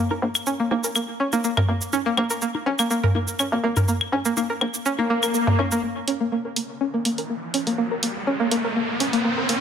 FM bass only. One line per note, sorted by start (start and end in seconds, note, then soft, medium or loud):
0.22 0.30 A#1 medium
0.71 0.79 A#1 medium
1.57 1.64 G#1 medium
1.69 1.83 G#1 medium
1.82 1.96 F1 medium
2.17 2.25 A#1 medium
2.66 2.74 A#1 medium
3.52 3.59 G#1 medium
3.64 3.78 G#1 loud
4.12 4.20 A#1 medium
4.61 4.69 A#1 medium
5.47 5.54 G#1 medium
5.59 5.73 G#1 medium
5.72 5.79 F1 medium